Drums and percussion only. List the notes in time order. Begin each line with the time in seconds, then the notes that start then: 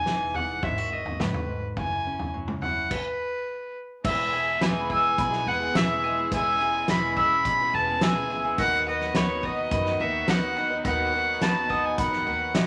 0.06 snare
0.34 floor tom
0.63 kick, floor tom
1.06 floor tom
1.20 snare, mid tom
1.34 floor tom
1.77 kick, floor tom
2.19 floor tom
2.48 mid tom
2.62 floor tom
2.91 kick, crash
4.05 kick, crash
4.61 snare, closed hi-hat
4.90 kick
5.18 kick, closed hi-hat
5.33 snare
5.75 snare, closed hi-hat
6.32 kick, closed hi-hat
6.88 snare, closed hi-hat
7.17 kick
7.45 kick, closed hi-hat
8.01 snare, closed hi-hat
8.58 kick, closed hi-hat
9.00 snare
9.15 snare, closed hi-hat
9.43 kick
9.71 kick, closed hi-hat
9.86 snare
10.28 snare, closed hi-hat
10.85 kick, closed hi-hat
11.41 snare, closed hi-hat
11.70 kick
11.98 kick, closed hi-hat
12.12 snare
12.55 snare, closed hi-hat